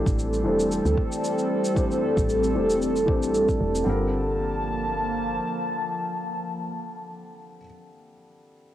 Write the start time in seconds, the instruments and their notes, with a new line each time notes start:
Already playing: felt piano E3 A3 D4 G4 C5, ambient pad G3 C4 A4
0.06 fm bass A1, kick, cabasa
0.19 cabasa
0.33 cabasa
0.44 fm bass E1, felt piano E3 A3 D4 G4 C5
0.60 cabasa
0.72 cabasa
0.85 fm bass D2, cabasa
0.98 kick
1.12 cabasa
1.24 cabasa
1.39 cabasa
1.65 cabasa
1.74 felt piano E3 A3 D4 G4, kick, cabasa
1.79 felt piano C5
1.91 cabasa
2.17 fm bass A1, kick, cabasa
2.29 cabasa
2.44 cabasa
2.54 fm bass E1, felt piano E3 A3 D4 G4 C5
2.70 cabasa
2.82 cabasa
2.96 cabasa
3.06 fm bass A1, felt piano E3 A3 D4 G4 C5, kick
3.23 cabasa
3.34 cabasa
3.49 kick, cabasa
3.61 fm bass E1
3.75 cabasa
3.83 fm bass G1, felt piano D3 G3 C4
3.87 ambient pad F3 A#3 A5, felt piano F4 A#4